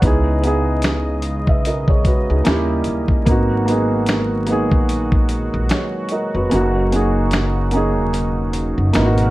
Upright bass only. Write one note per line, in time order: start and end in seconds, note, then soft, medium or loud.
0.03 1.48 C#2 loud
1.48 2.25 B1 medium
2.30 2.45 C#2 medium
2.47 2.85 D#2 loud
2.88 3.09 D#2 medium
3.27 4.68 G#1 loud
4.72 5.49 A#1 medium
5.54 5.69 A#1 loud
6.35 6.50 F1 medium
6.52 7.97 F#1 loud
7.97 8.73 E1 medium
8.78 8.94 F#1 medium
8.95 9.30 G#1 loud